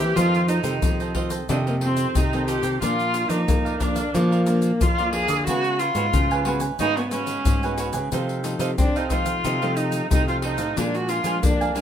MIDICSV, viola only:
0, 0, Header, 1, 2, 480
1, 0, Start_track
1, 0, Tempo, 662983
1, 118, Time_signature, 4, 2, 24, 8
1, 8550, End_track
2, 0, Start_track
2, 0, Title_t, "Viola"
2, 0, Program_c, 0, 41
2, 0, Note_on_c, 0, 67, 95
2, 115, Note_on_c, 0, 65, 100
2, 126, Note_off_c, 0, 67, 0
2, 345, Note_off_c, 0, 65, 0
2, 349, Note_on_c, 0, 63, 81
2, 806, Note_off_c, 0, 63, 0
2, 1081, Note_on_c, 0, 62, 73
2, 1135, Note_off_c, 0, 62, 0
2, 1206, Note_on_c, 0, 58, 73
2, 1259, Note_off_c, 0, 58, 0
2, 1313, Note_on_c, 0, 60, 82
2, 1564, Note_on_c, 0, 63, 80
2, 1575, Note_off_c, 0, 60, 0
2, 1787, Note_off_c, 0, 63, 0
2, 1792, Note_on_c, 0, 67, 84
2, 2020, Note_off_c, 0, 67, 0
2, 2040, Note_on_c, 0, 65, 94
2, 2387, Note_on_c, 0, 63, 78
2, 2398, Note_off_c, 0, 65, 0
2, 2750, Note_off_c, 0, 63, 0
2, 2754, Note_on_c, 0, 62, 86
2, 3002, Note_on_c, 0, 58, 78
2, 3012, Note_off_c, 0, 62, 0
2, 3482, Note_on_c, 0, 65, 89
2, 3493, Note_off_c, 0, 58, 0
2, 3709, Note_off_c, 0, 65, 0
2, 3713, Note_on_c, 0, 68, 102
2, 3942, Note_off_c, 0, 68, 0
2, 3958, Note_on_c, 0, 66, 108
2, 4190, Note_on_c, 0, 65, 90
2, 4201, Note_off_c, 0, 66, 0
2, 4677, Note_off_c, 0, 65, 0
2, 4925, Note_on_c, 0, 63, 102
2, 5051, Note_on_c, 0, 59, 82
2, 5062, Note_off_c, 0, 63, 0
2, 5153, Note_on_c, 0, 61, 90
2, 5164, Note_off_c, 0, 59, 0
2, 5638, Note_off_c, 0, 61, 0
2, 6362, Note_on_c, 0, 62, 77
2, 6488, Note_on_c, 0, 63, 73
2, 6499, Note_off_c, 0, 62, 0
2, 6588, Note_off_c, 0, 63, 0
2, 6593, Note_on_c, 0, 65, 87
2, 7069, Note_on_c, 0, 63, 79
2, 7080, Note_off_c, 0, 65, 0
2, 7314, Note_off_c, 0, 63, 0
2, 7320, Note_on_c, 0, 63, 87
2, 7431, Note_off_c, 0, 63, 0
2, 7446, Note_on_c, 0, 65, 78
2, 7499, Note_off_c, 0, 65, 0
2, 7553, Note_on_c, 0, 63, 80
2, 7799, Note_on_c, 0, 62, 88
2, 7810, Note_off_c, 0, 63, 0
2, 7925, Note_on_c, 0, 66, 80
2, 7935, Note_off_c, 0, 62, 0
2, 8030, Note_on_c, 0, 65, 82
2, 8041, Note_off_c, 0, 66, 0
2, 8273, Note_off_c, 0, 65, 0
2, 8278, Note_on_c, 0, 62, 81
2, 8500, Note_off_c, 0, 62, 0
2, 8511, Note_on_c, 0, 62, 86
2, 8550, Note_off_c, 0, 62, 0
2, 8550, End_track
0, 0, End_of_file